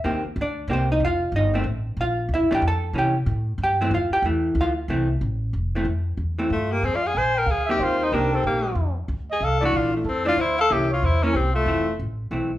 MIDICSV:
0, 0, Header, 1, 6, 480
1, 0, Start_track
1, 0, Key_signature, -1, "major"
1, 0, Tempo, 323102
1, 71, Time_signature, 3, 2, 24, 8
1, 18695, End_track
2, 0, Start_track
2, 0, Title_t, "Trumpet"
2, 0, Program_c, 0, 56
2, 9670, Note_on_c, 0, 65, 56
2, 9979, Note_on_c, 0, 67, 67
2, 10001, Note_off_c, 0, 65, 0
2, 10159, Note_on_c, 0, 68, 57
2, 10182, Note_off_c, 0, 67, 0
2, 10315, Note_on_c, 0, 74, 61
2, 10337, Note_off_c, 0, 68, 0
2, 10447, Note_on_c, 0, 77, 71
2, 10470, Note_off_c, 0, 74, 0
2, 10611, Note_on_c, 0, 80, 80
2, 10633, Note_off_c, 0, 77, 0
2, 10917, Note_on_c, 0, 79, 74
2, 10939, Note_off_c, 0, 80, 0
2, 11097, Note_on_c, 0, 77, 66
2, 11119, Note_off_c, 0, 79, 0
2, 11367, Note_off_c, 0, 77, 0
2, 11376, Note_on_c, 0, 76, 70
2, 11589, Note_on_c, 0, 72, 61
2, 11612, Note_off_c, 0, 76, 0
2, 11866, Note_off_c, 0, 72, 0
2, 11866, Note_on_c, 0, 72, 65
2, 12072, Note_on_c, 0, 70, 61
2, 12094, Note_off_c, 0, 72, 0
2, 12372, Note_on_c, 0, 69, 62
2, 12394, Note_off_c, 0, 70, 0
2, 12547, Note_off_c, 0, 69, 0
2, 12567, Note_on_c, 0, 67, 57
2, 13284, Note_off_c, 0, 67, 0
2, 13824, Note_on_c, 0, 75, 69
2, 14006, Note_on_c, 0, 77, 74
2, 14028, Note_off_c, 0, 75, 0
2, 14261, Note_off_c, 0, 77, 0
2, 14270, Note_on_c, 0, 74, 75
2, 14475, Note_off_c, 0, 74, 0
2, 14475, Note_on_c, 0, 74, 61
2, 14750, Note_off_c, 0, 74, 0
2, 14759, Note_on_c, 0, 65, 35
2, 14932, Note_on_c, 0, 69, 65
2, 14954, Note_off_c, 0, 65, 0
2, 15235, Note_off_c, 0, 69, 0
2, 15243, Note_on_c, 0, 74, 88
2, 15425, Note_on_c, 0, 72, 72
2, 15448, Note_off_c, 0, 74, 0
2, 15711, Note_off_c, 0, 72, 0
2, 15720, Note_on_c, 0, 77, 91
2, 15908, Note_on_c, 0, 76, 74
2, 15931, Note_off_c, 0, 77, 0
2, 16197, Note_off_c, 0, 76, 0
2, 16206, Note_on_c, 0, 73, 69
2, 16396, Note_on_c, 0, 72, 68
2, 16418, Note_off_c, 0, 73, 0
2, 16681, Note_on_c, 0, 70, 67
2, 16703, Note_off_c, 0, 72, 0
2, 16843, Note_on_c, 0, 67, 60
2, 16866, Note_off_c, 0, 70, 0
2, 17124, Note_off_c, 0, 67, 0
2, 17133, Note_on_c, 0, 65, 65
2, 17765, Note_off_c, 0, 65, 0
2, 18695, End_track
3, 0, Start_track
3, 0, Title_t, "Tenor saxophone"
3, 0, Program_c, 1, 66
3, 9689, Note_on_c, 1, 57, 69
3, 9984, Note_on_c, 1, 58, 82
3, 10007, Note_off_c, 1, 57, 0
3, 10174, Note_on_c, 1, 60, 73
3, 10196, Note_off_c, 1, 58, 0
3, 10338, Note_on_c, 1, 65, 78
3, 10360, Note_off_c, 1, 60, 0
3, 10502, Note_on_c, 1, 68, 76
3, 10524, Note_off_c, 1, 65, 0
3, 10660, Note_on_c, 1, 72, 84
3, 10683, Note_off_c, 1, 68, 0
3, 10972, Note_on_c, 1, 70, 83
3, 10995, Note_off_c, 1, 72, 0
3, 11156, Note_on_c, 1, 68, 75
3, 11178, Note_off_c, 1, 70, 0
3, 11431, Note_off_c, 1, 68, 0
3, 11454, Note_on_c, 1, 67, 83
3, 11639, Note_on_c, 1, 65, 75
3, 11662, Note_off_c, 1, 67, 0
3, 11936, Note_on_c, 1, 63, 81
3, 11959, Note_off_c, 1, 65, 0
3, 12100, Note_on_c, 1, 62, 69
3, 12122, Note_off_c, 1, 63, 0
3, 12407, Note_on_c, 1, 60, 71
3, 12430, Note_off_c, 1, 62, 0
3, 12565, Note_off_c, 1, 60, 0
3, 12578, Note_on_c, 1, 58, 64
3, 13009, Note_off_c, 1, 58, 0
3, 13853, Note_on_c, 1, 68, 83
3, 14029, Note_on_c, 1, 69, 81
3, 14052, Note_off_c, 1, 68, 0
3, 14310, Note_off_c, 1, 69, 0
3, 14337, Note_on_c, 1, 66, 90
3, 14505, Note_on_c, 1, 65, 75
3, 14527, Note_off_c, 1, 66, 0
3, 14788, Note_off_c, 1, 65, 0
3, 14801, Note_on_c, 1, 57, 45
3, 14982, Note_on_c, 1, 60, 73
3, 15004, Note_off_c, 1, 57, 0
3, 15267, Note_off_c, 1, 60, 0
3, 15278, Note_on_c, 1, 65, 102
3, 15459, Note_on_c, 1, 64, 81
3, 15482, Note_off_c, 1, 65, 0
3, 15746, Note_off_c, 1, 64, 0
3, 15755, Note_on_c, 1, 69, 104
3, 15933, Note_on_c, 1, 67, 87
3, 15956, Note_off_c, 1, 69, 0
3, 16223, Note_off_c, 1, 67, 0
3, 16241, Note_on_c, 1, 65, 77
3, 16418, Note_on_c, 1, 64, 73
3, 16440, Note_off_c, 1, 65, 0
3, 16689, Note_on_c, 1, 61, 82
3, 16711, Note_off_c, 1, 64, 0
3, 16875, Note_on_c, 1, 60, 69
3, 16897, Note_off_c, 1, 61, 0
3, 17154, Note_off_c, 1, 60, 0
3, 17163, Note_on_c, 1, 57, 79
3, 17781, Note_off_c, 1, 57, 0
3, 18695, End_track
4, 0, Start_track
4, 0, Title_t, "Hollow-body jazz guitar"
4, 0, Program_c, 2, 26
4, 62, Note_on_c, 2, 51, 61
4, 68, Note_on_c, 2, 58, 62
4, 72, Note_on_c, 2, 60, 61
4, 82, Note_on_c, 2, 67, 68
4, 338, Note_off_c, 2, 51, 0
4, 341, Note_off_c, 2, 58, 0
4, 343, Note_off_c, 2, 60, 0
4, 348, Note_off_c, 2, 67, 0
4, 610, Note_on_c, 2, 62, 70
4, 622, Note_on_c, 2, 74, 77
4, 1026, Note_off_c, 2, 62, 0
4, 1031, Note_on_c, 2, 51, 57
4, 1032, Note_on_c, 2, 58, 60
4, 1033, Note_off_c, 2, 74, 0
4, 1033, Note_on_c, 2, 60, 62
4, 1050, Note_on_c, 2, 67, 63
4, 1076, Note_off_c, 2, 60, 0
4, 1084, Note_on_c, 2, 72, 80
4, 1088, Note_off_c, 2, 51, 0
4, 1094, Note_on_c, 2, 60, 61
4, 1303, Note_off_c, 2, 58, 0
4, 1312, Note_off_c, 2, 67, 0
4, 1351, Note_off_c, 2, 72, 0
4, 1356, Note_off_c, 2, 60, 0
4, 1364, Note_on_c, 2, 63, 74
4, 1364, Note_on_c, 2, 75, 82
4, 1519, Note_off_c, 2, 75, 0
4, 1522, Note_off_c, 2, 63, 0
4, 1555, Note_on_c, 2, 77, 99
4, 1570, Note_on_c, 2, 65, 85
4, 1980, Note_off_c, 2, 77, 0
4, 1988, Note_off_c, 2, 65, 0
4, 2019, Note_on_c, 2, 75, 78
4, 2026, Note_on_c, 2, 63, 67
4, 2285, Note_on_c, 2, 51, 64
4, 2296, Note_off_c, 2, 63, 0
4, 2297, Note_off_c, 2, 75, 0
4, 2302, Note_on_c, 2, 57, 68
4, 2306, Note_on_c, 2, 60, 81
4, 2448, Note_off_c, 2, 51, 0
4, 2457, Note_off_c, 2, 57, 0
4, 2459, Note_off_c, 2, 60, 0
4, 2981, Note_on_c, 2, 77, 97
4, 2989, Note_on_c, 2, 65, 76
4, 3412, Note_off_c, 2, 77, 0
4, 3416, Note_off_c, 2, 65, 0
4, 3472, Note_on_c, 2, 76, 89
4, 3490, Note_on_c, 2, 64, 71
4, 3721, Note_off_c, 2, 64, 0
4, 3725, Note_on_c, 2, 52, 69
4, 3727, Note_on_c, 2, 57, 81
4, 3743, Note_off_c, 2, 76, 0
4, 3744, Note_on_c, 2, 62, 77
4, 3768, Note_off_c, 2, 57, 0
4, 3774, Note_on_c, 2, 67, 74
4, 3783, Note_on_c, 2, 79, 86
4, 3887, Note_off_c, 2, 52, 0
4, 3896, Note_off_c, 2, 62, 0
4, 3926, Note_off_c, 2, 67, 0
4, 3927, Note_off_c, 2, 79, 0
4, 3975, Note_on_c, 2, 81, 98
4, 3983, Note_on_c, 2, 69, 79
4, 4373, Note_on_c, 2, 52, 55
4, 4379, Note_off_c, 2, 69, 0
4, 4385, Note_on_c, 2, 58, 58
4, 4389, Note_off_c, 2, 81, 0
4, 4391, Note_on_c, 2, 61, 64
4, 4420, Note_off_c, 2, 58, 0
4, 4426, Note_on_c, 2, 67, 67
4, 4435, Note_on_c, 2, 79, 80
4, 4651, Note_off_c, 2, 52, 0
4, 4660, Note_off_c, 2, 61, 0
4, 4699, Note_off_c, 2, 67, 0
4, 4703, Note_off_c, 2, 79, 0
4, 5400, Note_on_c, 2, 79, 86
4, 5408, Note_on_c, 2, 67, 74
4, 5658, Note_on_c, 2, 52, 71
4, 5663, Note_off_c, 2, 67, 0
4, 5669, Note_on_c, 2, 57, 82
4, 5669, Note_on_c, 2, 60, 85
4, 5812, Note_off_c, 2, 52, 0
4, 5817, Note_off_c, 2, 60, 0
4, 5818, Note_off_c, 2, 57, 0
4, 5820, Note_off_c, 2, 79, 0
4, 5853, Note_on_c, 2, 65, 66
4, 5862, Note_on_c, 2, 77, 74
4, 6128, Note_off_c, 2, 65, 0
4, 6131, Note_off_c, 2, 77, 0
4, 6134, Note_on_c, 2, 67, 80
4, 6137, Note_on_c, 2, 79, 89
4, 6301, Note_off_c, 2, 79, 0
4, 6303, Note_off_c, 2, 67, 0
4, 6311, Note_on_c, 2, 52, 69
4, 6324, Note_on_c, 2, 57, 71
4, 6843, Note_on_c, 2, 77, 91
4, 6850, Note_on_c, 2, 65, 76
4, 7006, Note_off_c, 2, 77, 0
4, 7011, Note_off_c, 2, 65, 0
4, 7027, Note_off_c, 2, 52, 0
4, 7034, Note_off_c, 2, 57, 0
4, 7274, Note_on_c, 2, 52, 64
4, 7280, Note_on_c, 2, 57, 69
4, 7287, Note_on_c, 2, 60, 63
4, 7539, Note_off_c, 2, 52, 0
4, 7542, Note_off_c, 2, 57, 0
4, 7546, Note_off_c, 2, 60, 0
4, 8547, Note_on_c, 2, 52, 62
4, 8560, Note_on_c, 2, 60, 65
4, 8562, Note_on_c, 2, 57, 72
4, 8696, Note_off_c, 2, 52, 0
4, 8702, Note_off_c, 2, 60, 0
4, 8703, Note_off_c, 2, 57, 0
4, 9486, Note_on_c, 2, 52, 66
4, 9494, Note_on_c, 2, 57, 64
4, 9497, Note_on_c, 2, 60, 68
4, 9645, Note_off_c, 2, 52, 0
4, 9649, Note_off_c, 2, 57, 0
4, 9650, Note_off_c, 2, 60, 0
4, 11422, Note_on_c, 2, 51, 60
4, 11431, Note_on_c, 2, 58, 55
4, 11434, Note_on_c, 2, 60, 69
4, 11440, Note_on_c, 2, 67, 68
4, 12037, Note_off_c, 2, 51, 0
4, 12041, Note_off_c, 2, 58, 0
4, 12043, Note_off_c, 2, 60, 0
4, 12045, Note_off_c, 2, 67, 0
4, 12070, Note_on_c, 2, 51, 61
4, 12076, Note_on_c, 2, 58, 59
4, 12085, Note_on_c, 2, 60, 64
4, 12088, Note_on_c, 2, 67, 67
4, 12789, Note_off_c, 2, 51, 0
4, 12792, Note_off_c, 2, 58, 0
4, 12797, Note_off_c, 2, 60, 0
4, 12798, Note_off_c, 2, 67, 0
4, 14288, Note_on_c, 2, 52, 60
4, 14295, Note_on_c, 2, 57, 60
4, 14310, Note_on_c, 2, 62, 65
4, 14912, Note_off_c, 2, 52, 0
4, 14915, Note_off_c, 2, 57, 0
4, 14923, Note_off_c, 2, 62, 0
4, 15229, Note_on_c, 2, 52, 61
4, 15237, Note_on_c, 2, 57, 64
4, 15256, Note_on_c, 2, 62, 70
4, 15400, Note_off_c, 2, 52, 0
4, 15404, Note_off_c, 2, 57, 0
4, 15414, Note_off_c, 2, 62, 0
4, 15896, Note_on_c, 2, 52, 53
4, 15896, Note_on_c, 2, 58, 60
4, 15908, Note_on_c, 2, 61, 53
4, 16174, Note_off_c, 2, 52, 0
4, 16175, Note_off_c, 2, 58, 0
4, 16181, Note_off_c, 2, 61, 0
4, 16685, Note_on_c, 2, 52, 64
4, 16689, Note_on_c, 2, 58, 70
4, 16702, Note_on_c, 2, 61, 65
4, 16849, Note_off_c, 2, 52, 0
4, 16851, Note_off_c, 2, 58, 0
4, 16858, Note_off_c, 2, 61, 0
4, 17334, Note_on_c, 2, 52, 53
4, 17349, Note_on_c, 2, 57, 54
4, 17358, Note_on_c, 2, 60, 53
4, 17615, Note_off_c, 2, 52, 0
4, 17622, Note_off_c, 2, 57, 0
4, 17627, Note_off_c, 2, 60, 0
4, 18291, Note_on_c, 2, 52, 49
4, 18295, Note_on_c, 2, 57, 51
4, 18313, Note_on_c, 2, 60, 54
4, 18574, Note_off_c, 2, 52, 0
4, 18576, Note_off_c, 2, 57, 0
4, 18585, Note_off_c, 2, 60, 0
4, 18695, End_track
5, 0, Start_track
5, 0, Title_t, "Upright bass"
5, 0, Program_c, 3, 32
5, 60, Note_on_c, 3, 39, 80
5, 346, Note_off_c, 3, 39, 0
5, 533, Note_on_c, 3, 38, 88
5, 994, Note_off_c, 3, 38, 0
5, 1003, Note_on_c, 3, 36, 88
5, 1482, Note_off_c, 3, 36, 0
5, 1488, Note_on_c, 3, 29, 79
5, 1950, Note_off_c, 3, 29, 0
5, 1959, Note_on_c, 3, 31, 82
5, 2423, Note_off_c, 3, 31, 0
5, 2431, Note_on_c, 3, 33, 78
5, 2915, Note_off_c, 3, 33, 0
5, 2921, Note_on_c, 3, 34, 79
5, 3386, Note_off_c, 3, 34, 0
5, 3395, Note_on_c, 3, 38, 77
5, 3565, Note_on_c, 3, 34, 54
5, 3587, Note_off_c, 3, 38, 0
5, 3727, Note_off_c, 3, 34, 0
5, 3736, Note_on_c, 3, 33, 58
5, 3878, Note_off_c, 3, 33, 0
5, 3887, Note_on_c, 3, 41, 85
5, 4348, Note_off_c, 3, 41, 0
5, 4357, Note_on_c, 3, 48, 81
5, 4836, Note_off_c, 3, 48, 0
5, 4847, Note_on_c, 3, 45, 90
5, 5308, Note_off_c, 3, 45, 0
5, 5317, Note_on_c, 3, 43, 82
5, 5795, Note_off_c, 3, 43, 0
5, 5805, Note_on_c, 3, 41, 88
5, 6082, Note_off_c, 3, 41, 0
5, 6274, Note_on_c, 3, 40, 85
5, 6747, Note_off_c, 3, 40, 0
5, 6756, Note_on_c, 3, 38, 87
5, 7234, Note_off_c, 3, 38, 0
5, 7253, Note_on_c, 3, 36, 84
5, 7723, Note_off_c, 3, 36, 0
5, 7741, Note_on_c, 3, 33, 83
5, 8206, Note_off_c, 3, 33, 0
5, 8218, Note_on_c, 3, 29, 79
5, 8676, Note_off_c, 3, 29, 0
5, 8685, Note_on_c, 3, 41, 75
5, 9158, Note_off_c, 3, 41, 0
5, 9172, Note_on_c, 3, 40, 76
5, 9642, Note_off_c, 3, 40, 0
5, 9656, Note_on_c, 3, 43, 79
5, 10124, Note_off_c, 3, 43, 0
5, 10139, Note_on_c, 3, 41, 74
5, 10606, Note_off_c, 3, 41, 0
5, 10617, Note_on_c, 3, 34, 77
5, 11077, Note_off_c, 3, 34, 0
5, 11086, Note_on_c, 3, 38, 73
5, 11560, Note_off_c, 3, 38, 0
5, 11576, Note_on_c, 3, 39, 76
5, 12046, Note_off_c, 3, 39, 0
5, 12059, Note_on_c, 3, 36, 78
5, 12522, Note_off_c, 3, 36, 0
5, 12531, Note_on_c, 3, 34, 74
5, 12991, Note_off_c, 3, 34, 0
5, 13000, Note_on_c, 3, 41, 76
5, 13478, Note_off_c, 3, 41, 0
5, 13492, Note_on_c, 3, 38, 77
5, 13962, Note_off_c, 3, 38, 0
5, 13971, Note_on_c, 3, 36, 75
5, 14444, Note_off_c, 3, 36, 0
5, 14457, Note_on_c, 3, 34, 73
5, 14911, Note_off_c, 3, 34, 0
5, 14920, Note_on_c, 3, 41, 74
5, 15400, Note_off_c, 3, 41, 0
5, 15407, Note_on_c, 3, 38, 76
5, 15884, Note_off_c, 3, 38, 0
5, 15905, Note_on_c, 3, 36, 73
5, 16373, Note_off_c, 3, 36, 0
5, 16380, Note_on_c, 3, 40, 76
5, 16840, Note_off_c, 3, 40, 0
5, 16849, Note_on_c, 3, 36, 71
5, 17310, Note_off_c, 3, 36, 0
5, 17319, Note_on_c, 3, 29, 77
5, 17801, Note_off_c, 3, 29, 0
5, 17819, Note_on_c, 3, 33, 81
5, 18276, Note_off_c, 3, 33, 0
5, 18284, Note_on_c, 3, 35, 74
5, 18695, Note_off_c, 3, 35, 0
5, 18695, End_track
6, 0, Start_track
6, 0, Title_t, "Muted upright bass strokes"
6, 373, Note_on_c, 9, 29, 39
6, 522, Note_off_c, 9, 29, 0
6, 6091, Note_on_c, 9, 29, 40
6, 6240, Note_off_c, 9, 29, 0
6, 18695, End_track
0, 0, End_of_file